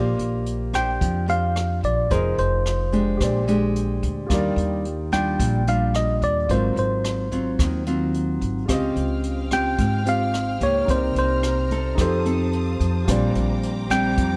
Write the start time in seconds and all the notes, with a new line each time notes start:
Already playing: A#1 A#3 D4 F4 G4 C5 D5
0.19 A#1, closed hi-hat
0.46 closed hi-hat
0.73 D4 G4 C5 G5, kick, cross-stick, closed hi-hat
1.01 F2 F3, kick, closed hi-hat
1.28 D4 G4 C5 F5, closed hi-hat
1.56 cross-stick, closed hi-hat
1.83 A#1 D5, kick, closed hi-hat
2.10 F1 F3 D#4 G#4 A#4 C5, kick, closed hi-hat
2.14 D#5
2.38 F1 C5, closed hi-hat
2.66 cross-stick, closed hi-hat
2.92 G#3 D4 G4, kick, closed hi-hat
3.17 A#1 A#2 G4, kick, cross-stick, closed hi-hat
3.21 C5 D5
3.48 G#3 D4 G4, closed hi-hat
3.76 closed hi-hat
4.03 D2, kick, closed hi-hat
4.27 D#2 D#3 G3 F4 G4, kick, cross-stick, closed hi-hat
4.31 D4 F4 A#4 D5
4.56 D#2, closed hi-hat
4.85 closed hi-hat
5.12 G3 D4 F4 G5, kick, cross-stick, closed hi-hat
5.39 A#1 A#2, kick, closed hi-hat
5.67 G3 D4 F4 F5, closed hi-hat
5.94 D#5, cross-stick, closed hi-hat
6.22 D#2 D5, kick, closed hi-hat
6.46 G#1 G#2 F#3 F4, kick, closed hi-hat
6.50 C4 F4 A#4 C5
6.76 G#1 C5, closed hi-hat
7.04 cross-stick, closed hi-hat
7.32 F#3 C4 F4, kick, closed hi-hat
7.59 D#2 D#3, kick, cross-stick, closed hi-hat
7.86 F#3 C4 F4, closed hi-hat
8.14 closed hi-hat
8.41 G#1, kick, closed hi-hat
8.66 C#2 C#3 C4 F4 G4 C5 F5 G5 F6, kick, cross-stick, closed hi-hat
8.70 C5 D#5
8.96 C#2, closed hi-hat
9.24 closed hi-hat
9.51 C4 F4 G4 G5, kick, cross-stick, closed hi-hat
9.78 G#1 G#2, kick, closed hi-hat
10.04 C4 F4 G4 C5 F5, closed hi-hat
10.09 F5
10.34 cross-stick, closed hi-hat
10.60 C#2 A#3 D#4 G4 C#5, kick, closed hi-hat
10.85 C2 C3 D#4 G4 A#5, kick, closed hi-hat
10.89 A#4 C5 D5
11.15 C2 C5, closed hi-hat
11.43 cross-stick, closed hi-hat
11.71 C4 D#4 A4, kick, closed hi-hat
11.95 F2 F3 D#4 G4 F5 A5 D#6, kick, cross-stick, closed hi-hat
11.99 A4 C5
12.25 C4 D#4 A4, closed hi-hat
12.53 closed hi-hat
12.80 F2, kick, closed hi-hat
13.05 A#1 A#2 G3 C4 D4 F4 G4 C5 G5 A#5 D6, kick, cross-stick, closed hi-hat
13.11 D5
13.35 A#1, closed hi-hat
13.63 closed hi-hat
13.90 G3 C4 D4 G5, kick, cross-stick, closed hi-hat
14.17 F2 F3, kick, closed hi-hat